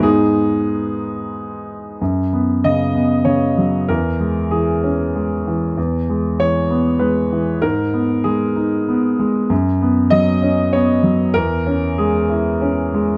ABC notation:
X:1
M:3/4
L:1/8
Q:1/4=96
K:F#mix
V:1 name="Grand piano"
[DG]4 z2 | z2 d2 c2 | A2 G4 | z2 c2 B2 |
A2 G4 | z2 d2 c2 | A2 G4 |]
V:2 name="Grand piano" clef=bass
[G,,G,B,]6 | F,, B, C, B, C, F, | E,, G, E, C G, E, | E,, G, E, B, G, E, |
G,, B, G, D B, G, | F,, B, F, C B, F, | E,, C G, E C G, |]